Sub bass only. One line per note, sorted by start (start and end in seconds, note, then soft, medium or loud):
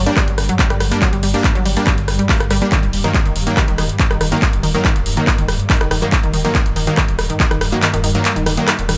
0.28 0.37 G1 medium
0.38 0.49 G1 loud
0.70 0.80 G1 medium
0.80 0.91 G1 loud
1.13 1.22 G1 medium
1.23 1.34 G1 loud
1.55 1.65 G1 medium
1.65 1.76 G1 loud
1.98 2.07 G1 medium
2.08 2.19 G1 loud
2.40 2.50 G1 medium
2.50 2.61 G1 loud
2.83 2.92 D#1 medium
2.93 3.04 D#1 loud
3.25 3.35 D#1 medium
3.35 3.46 D#1 loud
3.68 3.78 D#1 medium
3.78 3.89 D#1 loud
4.11 4.20 D#1 medium
4.21 4.32 D#1 loud
4.53 4.63 D#1 medium
4.63 4.74 D#1 loud
4.96 5.05 D#1 medium
5.06 5.17 D#1 loud
5.38 5.48 D#1 medium
5.48 5.59 D#1 loud
5.81 5.90 D#1 medium
5.91 6.02 D#1 medium
6.24 6.33 D#1 medium
6.34 6.44 D#1 loud
6.66 6.75 D#1 medium
6.76 6.87 D#1 loud
7.08 7.18 D#1 medium
7.19 7.30 D#1 loud
7.51 7.61 D#1 medium
7.61 7.72 D#1 loud
7.94 8.03 D#1 medium
8.04 8.15 D#1 loud
8.36 8.46 D#1 medium
8.46 8.57 D#1 loud
8.79 8.88 D#1 medium
8.89 8.98 D#1 loud